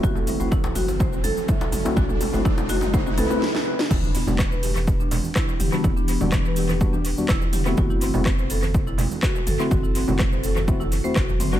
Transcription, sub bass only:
X:1
M:4/4
L:1/16
Q:1/4=124
K:Em
V:1 name="Sub bass" clef=bass
F,,,3 F,,,8 z3 F,,, z | F,,,3 F,,,8 z4 z | E,,,3 E,,,8 z3 E,,, z | E,,,3 E,,,8 z E,,,4 |
F,,,3 F,,,8 z3 F,,, z | F,,,3 F,,,8 z F,,,4 |]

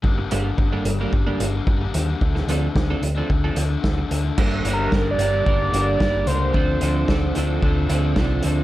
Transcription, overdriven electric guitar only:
X:1
M:4/4
L:1/16
Q:1/4=111
K:Gm
V:1 name="Overdriven electric guitar" clef=bass
[G,,D,G,B,D]2 [D,G,B,D]2 [G,,D,G,B,D] [G,B,D]2 [G,B,D]3 [D,G,B,D] [G,B,D] [G,,D,G,B,D] [G,B,D] [D,G,B,D] [G,B,D] | [D,F,A,D]2 [D,F,A,D]2 [D,F,A,D] [F,A,D]2 [F,A,D]3 [D,F,A,D] [F,A,D] [D,F,A,D] [F,A,D] [D,F,A,D] [F,A,D] | [G,,D,G,B,D]2 [G,,D,G,B,D]2 [G,,D,G,B,D]2 [G,,D,G,B,D]2 [G,,D,G,B,D]2 [G,,D,G,B,D]2 [G,,D,G,B,D]2 [G,,D,G,B,D]2 | [D,F,A,D]2 [D,F,A,D]2 [D,F,A,D]2 [D,F,A,D]2 [D,F,A,D]2 [D,F,A,D]2 [D,F,A,D]2 [D,F,A,D]2 |]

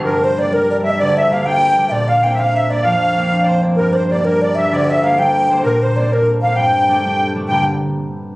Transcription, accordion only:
X:1
M:6/8
L:1/16
Q:3/8=129
K:Gdor
V:1 name="Accordion"
B2 c2 d2 B4 e2 | d2 e2 f2 g6 | d2 f2 g3/2 e/2 f2 e2 d2 | f6- f3/2 d/2 c2 z2 |
B3/2 d/2 c2 d2 B2 d2 e2 | d2 e2 f2 g4 c2 | B2 c4 B2 z2 f2 | g8- g2 z2 |
g2 z8 z2 |]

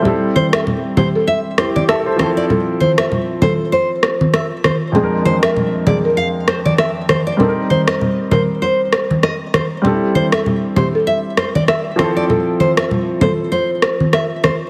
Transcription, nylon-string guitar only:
X:1
M:4/4
L:1/16
Q:"Swing 16ths" 1/4=98
K:C
V:1 name="Nylon-string guitar"
z2 c e z2 c z e z c d e z c d | z2 c e z2 c z c2 z2 e z c z | z2 c e z2 d z f z c d e z c d | z2 c _e z2 c z c2 z2 e z c z |
z2 c e z2 c z e z c d e z c d | z2 c e z2 c z c2 z2 e z c z |]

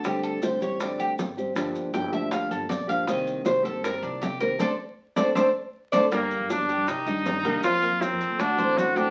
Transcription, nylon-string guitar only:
X:1
M:4/4
L:1/8
Q:1/4=158
K:Gm
V:1 name="Nylon-string guitar"
[D,G,CG]2 [D,G,CG] [G,CG] [D,G,CG]2 z [G,CG] | [D,F,B,DG]2 [F,B,DG] [F,B,DG] [F,B,DG]2 z [F,B,DG] | [C,E,B,CG]2 [E,B,CG] [E,B,CG] [E,B,CG]2 z [E,B,CG] | [A,CD] z2 [A,CD] [A,CD] z2 [A,CD] |
[D,G,B,DG]4 z [E,G,DG] [E,G,DG] [E,G,DG] | [F,B,CF]4 z [A,C^F] [D,A,CF] [A,CF] |]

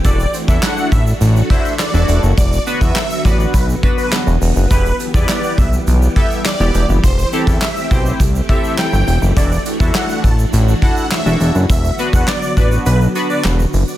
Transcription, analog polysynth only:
X:1
M:4/4
L:1/16
Q:1/4=103
K:Dmix
V:1 name="Analog polysynth"
[DEFA] z [Fc] [DEFA]4 z3 [DEFc]2 z [DEFA]3 | z2 [B,DFB]2 z2 [B,DFB]2 z2 [B,DFB]3 z3 | [B,EGB] z [GA] [B,EGB]4 z3 [B,EGA]2 z [B,EGd]3 | z2 [CEGA]2 z2 [CEGc]2 z2 [CEGA]3 z3 |
[DEFA] z [FA] [DEFA]4 z3 [DEFA]2 z [DEFA]3 | z2 [B,DFB]2 z2 [B,DFB]2 z2 [B,DFB]3 z3 |]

